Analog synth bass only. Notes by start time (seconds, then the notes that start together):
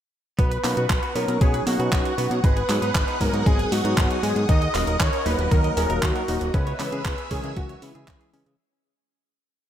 0.39 B1
0.64 B2
0.77 B2
0.90 B1
1.15 B2
1.28 B2
1.41 B1
1.67 B2
1.79 B2
1.92 B1
2.18 B2
2.31 B2
2.44 G#1
2.69 G#2
2.82 G#2
2.95 G#1
3.21 G#2
3.33 G#2
3.46 G#1
3.72 G#2
3.85 G#2
3.98 G#1
4.23 G#2
4.36 G#2
4.49 D#2
4.74 D#1
4.87 D#1
5.00 D#2
5.26 D#1
5.38 D#1
5.51 D#2
5.77 D#1
5.90 D#1
6.03 D#2
6.28 D#1
6.41 D#1
6.54 C#2
6.80 C#3
6.92 C#3
7.05 C#2
7.31 C#3
7.44 C#3
7.57 C#2
7.82 C#3
7.95 C#3
8.08 C#2
8.33 C#3
8.46 C#3